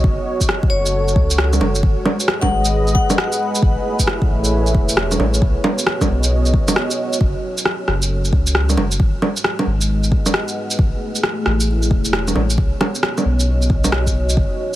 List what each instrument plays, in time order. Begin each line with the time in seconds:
Already playing: analog synth pad B3 F#4 C#5 D#5
0.04 sub bass F#1, kick
0.41 kick, shaker
0.49 cross-stick
0.63 analog synth pad A4, kick
0.70 sub bass F#1, vibraphone C#5
0.86 shaker
1.08 shaker
1.16 sub bass C#2, kick
1.31 shaker
1.38 cross-stick
1.53 low bongo, shaker
1.60 sub bass F#1, low bongo
1.75 shaker
1.83 sub bass G#1, analog synth pad G#3, kick
2.01 analog synth pad G#4
2.05 analog synth pad B4, low bongo
2.20 shaker
2.26 analog synth pad D#5, cross-stick
2.41 vibraphone F#5, kick, low bongo
2.50 sub bass G#1
2.65 analog synth pad F#5, shaker
2.88 shaker
2.95 vibraphone F#5, kick
3.10 low bongo, shaker
3.18 cross-stick
3.32 shaker
3.55 shaker
3.62 sub bass A1, analog synth pad A3, kick
3.77 analog synth pad E4
3.86 analog synth pad C#5
3.99 kick, shaker
4.07 cross-stick
4.22 kick
4.30 sub bass A1
4.44 shaker
4.67 shaker
4.75 sub bass E1, kick
4.89 shaker
4.97 cross-stick
5.11 low bongo, shaker
5.19 sub bass A1, low bongo
5.34 shaker
5.42 sub bass B1, analog synth pad B3, kick
5.56 analog synth pad F#4
5.64 low bongo
5.79 shaker
5.87 cross-stick
5.91 analog synth pad D#5
6.01 kick, low bongo, shaker
6.09 sub bass B1
6.24 shaker
6.46 shaker
6.54 kick
6.68 low bongo, shaker
6.76 cross-stick
6.91 shaker
7.13 shaker
7.21 sub bass F#1, kick
7.58 shaker
7.65 cross-stick
7.82 analog synth pad A4
7.88 sub bass F#1, cross-stick
8.02 shaker
8.25 shaker
8.33 sub bass C#2, kick
8.47 shaker
8.55 cross-stick
8.69 low bongo, shaker
8.77 sub bass F#1, low bongo
8.92 shaker
8.99 sub bass G#1, analog synth pad G#3, kick
9.22 low bongo
9.30 analog synth pad D#5
9.37 analog synth pad G#4, shaker
9.44 analog synth pad B4, cross-stick
9.59 low bongo
9.66 sub bass G#1
9.81 analog synth pad F#5, shaker
10.04 shaker
10.12 kick
10.26 low bongo, shaker
10.34 cross-stick
10.48 shaker
10.71 shaker
10.79 sub bass A1, analog synth pad A3, kick
11.05 analog synth pad E4
11.15 shaker
11.23 cross-stick
11.46 sub bass A1, cross-stick
11.60 analog synth pad C#5, shaker
11.83 shaker
11.91 sub bass E1, kick
12.05 shaker
12.13 cross-stick
12.28 low bongo, shaker
12.35 sub bass A1, low bongo
12.50 shaker
12.58 sub bass B1, analog synth pad B3, kick
12.81 cross-stick, low bongo
12.91 analog synth pad F#4, shaker
12.97 analog synth pad D#5
13.03 cross-stick
13.18 low bongo, shaker
13.25 sub bass B1
13.40 shaker
13.62 shaker
13.70 sub bass B1, kick
13.84 low bongo, shaker
13.92 cross-stick
14.07 kick, shaker
14.29 shaker
14.37 sub bass F#1, kick